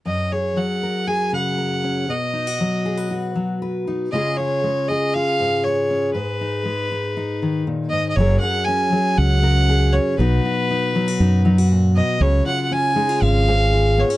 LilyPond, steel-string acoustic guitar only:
\new Staff \with { instrumentName = "Steel-string acoustic guitar" } { \time 4/4 \key fis \major \tempo 4 = 119 << { r8 gis'4 ais'8 gis'4 ais'8 cis'8 | r8 dis'16 fis'8. gis'16 b'16 fis'4 b'8 dis'8 | <gis cis' eis' gis'>8 eis'4 gis'8 eis'4 gis'8 cis'8 | r8 dis'4 dis'8 dis'2 |
<fis cis' gis' ais'>8 gis'8 cis'8 gis'8 cis'8 ais'8 gis'8 cis'8 | <fis dis' fis'>8 fis'8 dis'8 dis'16 fis'16 dis'8 dis'16 fis'4~ fis'16 | r8 eis'8 cis'8 dis'16 eis'16 cis'8 gis'8 eis'8 b16 cis'16 | } \\ { fis,4 fis4. cis4. | b,4 fis4. fis4. | cis4 gis4. gis,4. | gis,4 gis4. dis8 ais,8 gis,8 |
fis,4. fis4 cis4. | b,4. fis4 fis8 ais,8 b,8 | cis4. gis4 gis,4. | } >> }